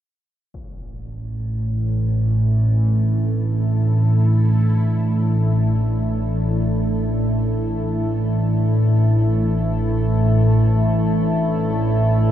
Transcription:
0.54 synth drone A1 A2 D4, analog synth pad A2, impact
1.25 analog synth pad E3
2.81 analog synth pad E4
2.96 analog synth pad A4

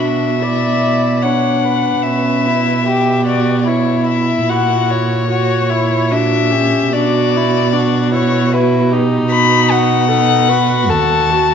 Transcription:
Already playing: cello B2, violin D4, viola F#4
0.00 violin E5
0.42 violin E4, viola D5
1.22 violin D4 F#5, viola C#5
1.64 viola B4
2.03 cello B2, violin C#4 E5
2.47 violin E4
2.87 viola G4, violin G4
3.26 violin F#4 D5
3.61 violin D5
3.67 viola E4, violin E4 C#5
4.07 violin E5
4.48 cello A#2, violin F#4 F#5
4.91 violin C#5
5.29 viola F#4, violin F#4
5.69 viola E4, violin E4
6.11 violin D4 E5, viola F#4
6.50 violin C#4, viola G4
6.92 cello B2, violin D4 D5, viola F#4
7.36 violin E4
7.73 viola D4, violin F#4
8.12 viola E4, violin C#5
8.51 violin E4 B4, viola F#4
8.91 violin D#4, viola G4
9.30 cello B2, viola F#4, violin B5
9.71 violin F#5
10.08 violin D#4, viola A4
10.48 violin F#4, viola B4
10.89 cello D#2, viola A4, violin A5
11.30 viola F#4

